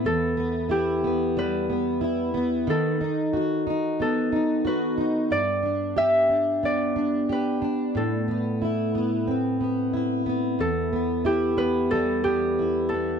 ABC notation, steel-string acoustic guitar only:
X:1
M:4/4
L:1/8
Q:"Swing 16ths" 1/4=91
K:Em
V:1 name="Steel-string acoustic guitar"
E,, B, E B, G, B, E B, | ^D, ^D F D B, D F D | G,, D G D B, D G D | A,, B, E B, C B, E B, |
E,, B, E B, G, B, E B, |]